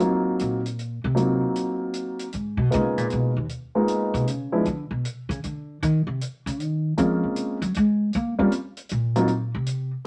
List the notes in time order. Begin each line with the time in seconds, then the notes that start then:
0.00 F#3 A#3 C4 D#4 F4, closed hi-hat
0.39 A#2, closed hi-hat
0.66 closed hi-hat
0.79 closed hi-hat
1.04 C3
1.15 F#3 A#3 C4 D#4 F4, closed hi-hat
1.56 closed hi-hat
1.94 closed hi-hat
2.19 closed hi-hat
2.33 G#2, closed hi-hat
2.57 B2
2.71 C#3 G#3 A#3 B3 D#4 F4, closed hi-hat
2.97 A#2, closed hi-hat
3.10 B2, closed hi-hat
3.36 D#2
3.49 closed hi-hat
3.75 G#3 A#3 B3 D#4 F4
3.88 closed hi-hat
4.14 B2, closed hi-hat
4.27 C#3, closed hi-hat
4.52 F3 G#3 B3 D4 E4
4.65 D3, closed hi-hat
4.91 B2
5.05 closed hi-hat
5.29 C#3, closed hi-hat
5.44 D3, closed hi-hat
5.83 D#3, closed hi-hat
6.07 C3
6.21 closed hi-hat
6.46 C#3, closed hi-hat
6.60 D#3, closed hi-hat
6.98 F3 G#3 A#3 C4 C#4 F4, closed hi-hat
7.23 C#3
7.36 closed hi-hat
7.62 F#3, closed hi-hat
7.74 G#3, closed hi-hat
8.13 A#3, closed hi-hat
8.39 G3 A#3 C4 C#4 F4
8.52 closed hi-hat
8.77 closed hi-hat
8.89 A#2, closed hi-hat
9.16 F#3 A#3 C4 D#4 F4, closed hi-hat
9.28 closed hi-hat
9.55 C3
9.66 closed hi-hat